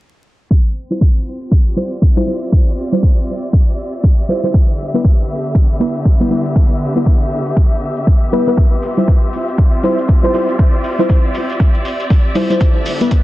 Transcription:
0.51 C4, kick, closed hi-hat
0.90 G3 E4 F4 C5, closed hi-hat
1.01 kick, closed hi-hat
1.37 G4
1.41 closed hi-hat
1.51 kick, closed hi-hat
1.66 closed hi-hat
1.71 D5
1.76 G3 E4 F4 C5
1.92 closed hi-hat
1.99 E5, kick, closed hi-hat
2.16 G3 E4 F4 C5
2.27 G3 E4 F4 C5
2.42 closed hi-hat
2.52 kick, closed hi-hat
2.92 G3 E4 F4 C5, closed hi-hat
3.03 kick, closed hi-hat
3.43 closed hi-hat
3.53 kick, closed hi-hat
3.68 closed hi-hat
3.93 closed hi-hat
4.04 kick, closed hi-hat
4.28 G3 E4 F4 C5
4.43 G3 E4 F4 C5, closed hi-hat
4.54 D3, kick, closed hi-hat
4.82 B3
4.94 G3 B3 E4 B4, closed hi-hat
5.04 kick, closed hi-hat
5.45 closed hi-hat
5.55 kick, closed hi-hat
5.70 closed hi-hat
5.80 G3 B3 E4 B4
5.95 closed hi-hat
6.05 kick, closed hi-hat
6.20 G3 B3 E4 B4
6.30 G3 B3 E4 B4
6.45 closed hi-hat
6.56 kick, closed hi-hat
6.95 G3 B3 E4 B4, closed hi-hat
7.06 kick, closed hi-hat
7.21 closed hi-hat
7.46 closed hi-hat
7.57 kick, closed hi-hat
7.71 closed hi-hat
7.97 closed hi-hat
8.07 kick, closed hi-hat
8.32 G3 B3 E4 B4
8.47 G3 B3 E4 B4, closed hi-hat
8.57 C4, kick, closed hi-hat, shekere
8.72 F4
8.83 open hi-hat, shekere
8.97 G3 E4 F4 C5, closed hi-hat, shekere
9.08 kick, closed hi-hat, shekere
9.33 open hi-hat, shekere
9.47 D5, closed hi-hat, shekere
9.57 kick, closed hi-hat, shekere
9.73 closed hi-hat
9.83 G3 E4 F4 C5, open hi-hat, shekere
9.98 closed hi-hat, shekere
10.07 kick, closed hi-hat, shekere
10.23 G3 E4 F4 C5
10.33 G3 E4 F4 C5, open hi-hat, shekere
10.49 closed hi-hat, shekere
10.58 kick, closed hi-hat, shekere
10.84 open hi-hat, shekere
10.99 G3 E4 F4 C5, closed hi-hat, shekere
11.09 kick, closed hi-hat, shekere
11.35 open hi-hat, shekere
11.50 closed hi-hat, shekere
11.60 kick, closed hi-hat, shekere
11.75 closed hi-hat
11.85 open hi-hat, shekere
12.00 closed hi-hat, shekere
12.10 kick, open hi-hat, shekere
12.35 G3 E4 F4 C5, open hi-hat, shekere
12.50 G3 E4 F4 C5, closed hi-hat, shekere
12.61 D3, kick, closed hi-hat, shekere
12.79 B3
12.86 open hi-hat, shekere
13.00 G3 B3 E4 B4, closed hi-hat, shekere
13.11 kick, closed hi-hat, shekere

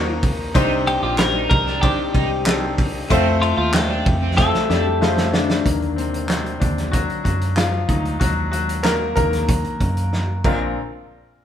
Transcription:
Already playing: D#2 A#3 D#4 F#4 A#4 C5 D#5
0.23 kick, open hi-hat, ride
0.54 C2 C3 C4 D4 D#4 G4 C5, kick, hi-hat pedal, ride
0.87 G4, ride
1.03 A#1 F4 G4
1.18 C4 D4 D#4 G4 A#4 C5, snare, clap, ride
1.35 D#4
1.50 C2 A#4, kick, ride
1.67 D4, snare
1.81 C4 D4 D#4 G4 C5, kick, ride
2.15 C2 D#4, kick, ride
2.46 C4 D4 D#4 G4 A4, snare, clap, ride
2.78 kick, open hi-hat, ride
3.10 F2 A3 C4 F4 A4 C5, kick, hi-hat pedal, ride
3.42 F4, ride
3.57 D#2 F4
3.73 A3 C4 F4 G4 A4 C5, snare, clap, ride
3.90 D4
4.06 F2, kick, ride
4.22 C4
4.37 A3 C4 F4 A4 C5, kick, snare
4.54 snare
4.69 F2 G3 D4 G4, snare
5.01 F3 A3 C4 F4 A4 C5, snare
5.18 snare
5.33 D3 D4, snare
5.50 snare
5.65 D#2 D#3 F#3 A#3, kick, closed hi-hat
5.82 closed hi-hat
5.96 C3 C4, closed hi-hat
6.14 closed hi-hat
6.28 C3 C4, snare, clap, closed hi-hat
6.46 closed hi-hat
6.60 D#2 D3 D4, kick, closed hi-hat
6.78 snare, closed hi-hat
6.92 F#3 F#4, kick, closed hi-hat
7.10 closed hi-hat
7.24 F#2 F#3 F#4, kick, closed hi-hat
7.41 closed hi-hat
7.56 F3 F4, snare, clap, closed hi-hat
7.88 D2 F#3 D#4, kick, closed hi-hat
8.05 closed hi-hat
8.20 D#2 F#3 F#4, kick, closed hi-hat
8.52 F#3 F#4, closed hi-hat
8.69 closed hi-hat
8.83 A#3 A#4, snare, clap, closed hi-hat
9.16 D#2 D#3 F#3 A#3 A#4, kick, closed hi-hat
9.33 snare, closed hi-hat
9.48 kick, closed hi-hat
9.64 closed hi-hat
9.80 F#2, kick, closed hi-hat
9.97 closed hi-hat
10.13 snare
10.44 A#1 C4 D4 F4 A#4, kick, crash

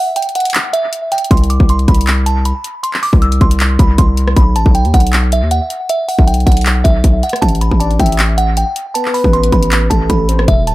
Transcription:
Already playing: F#5
0.16 G5, closed hi-hat
0.22 closed hi-hat
0.29 closed hi-hat
0.35 F#5, closed hi-hat
0.40 closed hi-hat
0.45 closed hi-hat
0.50 closed hi-hat
0.54 clap, closed hi-hat
0.73 E5, closed hi-hat
0.93 closed hi-hat
1.12 G5, closed hi-hat
1.18 closed hi-hat
1.24 closed hi-hat
1.31 C2 C6, kick, closed hi-hat
1.37 closed hi-hat
1.44 closed hi-hat
1.50 D6, closed hi-hat
1.60 C2, kick
1.69 C6, closed hi-hat
1.79 closed hi-hat
1.88 C2 B5, kick, closed hi-hat
1.95 closed hi-hat
2.01 closed hi-hat
2.07 clap, closed hi-hat
2.26 A5, closed hi-hat
2.45 B5, closed hi-hat
2.64 closed hi-hat
2.83 C6, closed hi-hat
2.94 clap
3.03 D6, open hi-hat
3.13 C2, kick
3.22 E6, closed hi-hat
3.32 closed hi-hat
3.41 C2 C6, kick, closed hi-hat
3.51 closed hi-hat
3.60 clap, closed hi-hat
3.79 C2 B5, kick, closed hi-hat
3.98 C2 C6, kick, closed hi-hat
4.17 closed hi-hat
4.28 cross-stick
4.36 B1 B5, kick, closed hi-hat
4.56 A1 A5, closed hi-hat
4.66 B1, kick
4.75 G5, closed hi-hat
4.85 D#2, closed hi-hat
4.94 B1 F#5, kick, closed hi-hat
5.00 closed hi-hat
5.07 closed hi-hat
5.13 clap, closed hi-hat
5.32 E5, closed hi-hat
5.42 D#2
5.51 F#5, closed hi-hat
5.70 closed hi-hat
5.89 E5, closed hi-hat
6.09 F#5, open hi-hat
6.19 B1, kick
6.27 G5, closed hi-hat
6.34 closed hi-hat
6.40 closed hi-hat
6.46 B1 F#5, kick, closed hi-hat
6.52 closed hi-hat
6.57 closed hi-hat
6.61 closed hi-hat
6.66 clap, closed hi-hat
6.84 B1 E5, kick, closed hi-hat
7.04 B1, kick, closed hi-hat
7.23 F#5, closed hi-hat
7.29 cross-stick, closed hi-hat
7.36 closed hi-hat
7.42 A1 A5, kick, closed hi-hat
7.49 closed hi-hat
7.55 closed hi-hat
7.61 B5, closed hi-hat
7.71 A1, kick
7.80 D5 A5, closed hi-hat
7.91 closed hi-hat
8.00 A1 E5 G5, kick, closed hi-hat
8.06 closed hi-hat
8.12 closed hi-hat
8.19 clap, closed hi-hat
8.38 F#5, closed hi-hat
8.57 G5, closed hi-hat
8.76 closed hi-hat
8.94 B4 A5, closed hi-hat
9.05 clap
9.14 B5, open hi-hat
9.24 A1, kick
9.33 C6, closed hi-hat
9.43 closed hi-hat
9.52 A1 B5, kick, closed hi-hat
9.63 closed hi-hat
9.72 clap, closed hi-hat
9.90 A1 A4 A5, kick, closed hi-hat
10.10 A1 B5, kick, closed hi-hat
10.29 C5, closed hi-hat
10.39 cross-stick
10.48 E1 E5, kick, closed hi-hat
10.67 D1 A5, closed hi-hat

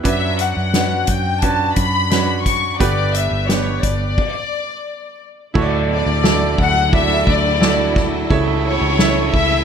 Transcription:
0.03 F#2 F#3 C#4 D4 F#4 B4 E5, kick, closed hi-hat
0.39 F#5, closed hi-hat
0.57 F#2
0.74 C#4 D4 F#4 B4, snare, closed hi-hat
1.07 F#2 G5, kick, closed hi-hat
1.41 C#4 D4 F#4 B4 A5, kick, closed hi-hat
1.75 F#2 B5, kick, closed hi-hat
2.10 C#4 D4 F#4 B4, snare, closed hi-hat
2.45 C#6, kick, snare, closed hi-hat
2.79 G1 G2 D3 B3 D4 G4 B4 D5, kick, closed hi-hat
3.13 E5, closed hi-hat
3.31 G1
3.48 B3 D4 G4 B4 C#5, snare, closed hi-hat
3.83 G1 D5, kick, closed hi-hat
4.18 kick, crash
5.54 D2 A2 D3 F#3 A3 E4 F#4 A4 C#5, kick, crash
5.62 D5
5.89 D5, ride
6.06 D2
6.23 E4 F#4 A4 D5, snare, ride
6.58 D2 F#5, kick, ride
6.92 E4 F#4 A4 D5 E5, kick, ride
7.27 D2 D5, kick, ride
7.60 E4 F#4 A4 D5, snare, ride
7.96 kick, snare, ride
8.30 C#2 C#3 E3 A3 E4 A4 C#5 E5, kick, ride
8.64 C#5, ride
8.81 C#2
8.99 E4 A4 C#5 E5, snare, ride
9.33 C#2 E5, kick, ride

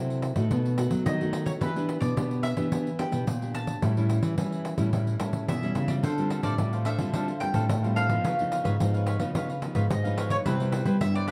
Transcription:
Already playing: C3 F#3 E4 A4 C5 F#5
0.10 pandeiro
0.22 pandeiro
0.36 A2 A3 D#4 F#4, pandeiro
0.51 B2, pandeiro
0.65 pandeiro
0.78 A3 D#4 F#4, pandeiro
0.91 F#3, pandeiro
1.06 D#3 F#3 D#5, pandeiro
1.21 A3 D#4 F#4, pandeiro
1.33 pandeiro
1.46 C#5, pandeiro
1.61 E3 B3 D4 G4 B4, pandeiro
1.76 B3 D4 G4, pandeiro
1.89 pandeiro
2.00 B2 D5, pandeiro
2.16 B2 B3 D4 G4, pandeiro
2.31 pandeiro
2.43 E5, pandeiro
2.56 E3 B3 D4 G4, pandeiro
2.72 E3 B3 D4 G4, pandeiro
2.87 pandeiro
2.99 B3 D4 G4 G5, pandeiro
3.12 B2, pandeiro
3.27 A#2, pandeiro
3.42 D4 G4, pandeiro
3.54 A5, pandeiro
3.67 pandeiro
3.82 A2 G3 C#4 E4, pandeiro
3.97 G3 C#4 E4, pandeiro
4.10 pandeiro
4.22 E3, pandeiro
4.38 E3 G3 C#4 E4, pandeiro
4.52 pandeiro
4.65 pandeiro
4.78 A2 G3 C#4 E4, pandeiro
4.93 A2 G3 C#4 E4, pandeiro
5.07 pandeiro
5.20 A2 G3 C#4 E4, pandeiro
5.33 pandeiro
5.48 B2 E3 E5, pandeiro
5.63 G3 C#4 E4, pandeiro
5.75 C#3, pandeiro
5.88 G3 C4 F4 D5, pandeiro
6.03 D3 D4 A4 C5 F5, pandeiro
6.18 G3 C4 F4, pandeiro
6.30 D4 A4 C5 F5, pandeiro
6.43 A2 D4 A4 C5 D5 F5, pandeiro
6.58 A2 G3 C4 F4, pandeiro
6.73 A4 C5 F5, pandeiro
6.85 D4 A4 C5 E5 F5, pandeiro
6.99 D3 G3 C4 F4 A4 C5 F5, pandeiro
7.13 D3 G3 C4 D4 F4 A4 C5 F5, pandeiro
7.28 C5 F5, pandeiro
7.40 G3 C4 F4 G5, pandeiro
7.53 A2 D4 A4 C5 F5, pandeiro
7.69 A2, pandeiro
7.83 G3 C4 F4 A4 C5 F5, pandeiro
7.95 D4 A4 C5 F5, pandeiro
8.09 F3 B3 D#4 A4 C5 F5, pandeiro
8.24 C#3 F4 B4 C#5 F5, pandeiro
8.39 F3 B3 D#4, pandeiro
8.51 F4 B4 C#5 F5, pandeiro
8.64 G#2 F4 B4 C#5 F5, pandeiro
8.80 G#2 F3 B3 D#4, pandeiro
8.94 B4 C#5 F5, pandeiro
9.06 F4 B4 C#5 F5, pandeiro
9.19 C#3 F3 B3 D#4 B4 C#5 F5, pandeiro
9.35 C#3 F3 B3 D#4 F4 B4 C#5 F5, pandeiro
9.49 B4 C#5 F5, pandeiro
9.62 F3 B3 D#4, pandeiro
9.75 G#2 F4 B4 C#5 F5, pandeiro
9.90 G#2 D#5, pandeiro
10.04 F3 B3 D#4 B4 C#5 F5, pandeiro
10.17 F4 B4 C#5 F5, pandeiro
10.30 B4 C#5 F5, pandeiro
10.45 C3 G3 B3 E4 B4 C5 G5, pandeiro
10.60 G3 B3 E4, pandeiro
10.72 E4 B4 C5 G5, pandeiro
10.85 G3 E4 B4 C5 G5, pandeiro
11.01 G2 G3 B3 E4 E5, pandeiro
11.14 B4 C5 D5 G5, pandeiro
11.28 E4, pandeiro

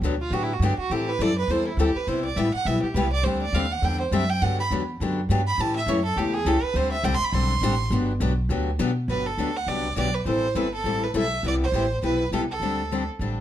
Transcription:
0.01 D2 D3 F#3 B3 D4 G4
0.22 F4
0.31 A2 D3 F#3 B3 D4 F#4 G4
0.43 E4
0.53 F#4
0.60 G2 D3 F#3 B3 D4 G4
0.78 F#4, muted upright bass stroke
0.90 A2 E3 G3 C4 E4 G4 A4
1.08 B4
1.19 F#2 E3 G3 C4 E4 A4 D5
1.38 B4
1.48 E2 E3 G3 C4 E4 A4 C5
1.68 E4
1.77 D2 E3 G3 C4 E4 G4 A4
1.95 B4, muted upright bass stroke
2.07 C2 C3 G3 B3 E4 G4 C5
2.25 D5
2.36 A1 C3 G3 B3 E4 G4 E5
2.54 F#5, muted upright bass stroke
2.65 B1 C3 G3 B3 E4 G4 E5
2.83 G4, muted upright bass stroke
2.94 C2 C3 G3 B3 E4 G4 B4
3.13 D5
3.23 D2 D3 G3 C4 D4 G4 C5
3.42 D5
3.53 D#2 D3 G3 C4 D4 G4 F5
3.72 F#5
3.82 E2 D3 G3 C4 D4 G4 G5
4.01 C5
4.11 F#2 D3 G3 C4 D4 G4 E5
4.30 G5
4.42 G2 D3 F#3 B3 D4 G4 F#5
4.60 B5
4.70 E2 D3 F#3 B3 D4 G4
5.00 F#2 D3 F#3 B3 D4 G4
5.29 G2 D3 F#3 B3 D4 G4
5.47 B5
5.58 A2 C#3 E3 A3 C#4 G4 A5
5.77 E5
5.86 F#2 C#3 E3 A3 C#4 G4 C#5
6.05 A4
6.16 E2 C#3 E3 A3 C#4 G4
6.34 G#4
6.45 C#2 C#3 E3 A3 C#4 G4 A4
6.63 B4, muted upright bass stroke
6.74 D2 D3 G3 C4 D4 G4 C5
6.92 E5
7.03 C2 D3 G3 C4 D4 G4 G5
7.15 C6
7.20 muted upright bass stroke
7.24 B5
7.32 B1 D3 G3 C4 D4 G4 C6
7.62 A1 D3 G3 C4 D4 G4
7.90 G1 D3 F#3 B3 D4 G4
8.20 B1 D3 F#3 B3 D4 G4
8.49 D2 D3 F#3 B3 D4 G4
8.79 B2 D3 F#3 B3 D4 G4
9.08 G1 D3 F#3 B3 D4 G4 B4
9.26 A4
9.38 D2 D3 F#3 B3 D4 G4
9.57 F#5
9.67 C2 D3 F#3 B3 D4 G4 D5
9.96 B1 D3 F#3 B3 D4 G4 D5
10.14 B4
10.25 A1 E3 G3 C4 E4 A4 C5
10.55 G1 E3 G3 C4 E4 A4 B4
10.75 A4
10.84 A1 E3 G3 C4 E4 A4
11.04 B4
11.14 B1 E3 G3 C4 E4 A4 E5
11.43 C2 C3 G3 B3 E4 G4
11.47 D5
11.64 C5
11.72 A1 C3 G3 B3 E4 G4
12.03 B1 C3 G3 B3 E4 G4 B4
12.32 C2 C3 G3 B3 E4 G4 A4
12.51 A4
12.60 D2 D3 G3 C4 D4 G4
12.91 D3 G3 C4 D4 G4
13.19 A1 D3 G3 C4 D4 G4

